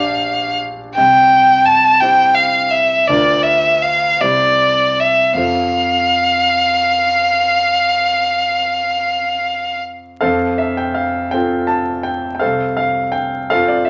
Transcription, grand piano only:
0.00 0.98 A#1 soft
0.00 0.93 D4 soft
0.00 0.93 G4 soft
0.00 0.93 D5 soft
0.97 1.98 C2 soft
2.02 3.04 E4 soft
2.02 3.04 G4 soft
2.02 3.05 C5 soft
3.09 4.18 D2 soft
3.09 4.17 D4 soft
3.09 4.17 F4 soft
3.09 4.18 A#4 soft
4.21 5.35 C2 soft
4.21 5.35 E4 soft
4.21 5.35 G4 soft
4.21 5.35 C5 soft
5.34 10.16 F2 soft
5.34 10.17 F4 soft
5.34 10.18 A4 soft
5.38 10.18 C5 soft
10.21 11.31 F2 soft
10.21 10.57 A4 soft
10.21 10.58 C5 soft
10.21 10.60 F5 medium
10.58 10.78 E5 medium
10.77 10.97 G5 medium
10.94 11.33 F5 soft
11.31 12.37 C4 soft
11.31 12.37 F4 soft
11.31 12.38 A4 soft
11.31 11.68 G5 medium
11.67 12.04 A5 medium
12.03 12.33 G5 medium
12.35 12.42 G5 soft
12.40 13.48 C2 soft
12.40 12.75 A4 soft
12.40 12.75 C5 soft
12.40 12.75 F5 medium
12.77 13.13 F5 medium
13.12 13.49 G5 medium
13.50 13.90 C4 soft
13.50 13.90 F4 soft
13.50 13.68 A4 soft
13.50 13.68 C5 soft
13.50 13.68 F5 medium
13.68 13.87 D5 medium
13.85 13.90 E5 medium

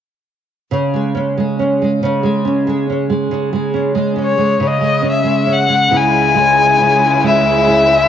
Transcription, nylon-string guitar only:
0.71 2.02 C#3 medium
0.94 1.37 G#3 soft
1.15 1.59 C#4 soft
1.38 1.81 G#3 soft
1.59 2.45 C#4 soft
1.82 2.23 G#3 soft
2.03 3.30 C#3 medium
2.23 2.67 G#3 soft
2.45 2.89 C#4 soft
2.67 3.09 G#3 soft
2.90 3.73 C#4 soft
3.10 3.52 G#3 soft
3.31 4.59 C#3 medium
3.53 3.94 G#3 soft
3.74 4.15 C#4 soft
3.95 4.37 G#3 soft
4.16 5.02 C#4 soft
4.38 4.81 G#3 soft
4.60 5.90 C#3 medium
4.81 5.23 G#3 soft
5.02 5.46 C#4 medium
5.24 5.68 G#3 soft
5.47 6.79 C#4 soft
5.69 6.34 G#3 soft
5.91 8.08 C#3 medium
5.91 7.67 E4 medium
6.34 7.23 G#3 soft
6.80 8.08 C#4 soft
7.23 8.08 G#3 soft
7.68 8.08 E4 medium

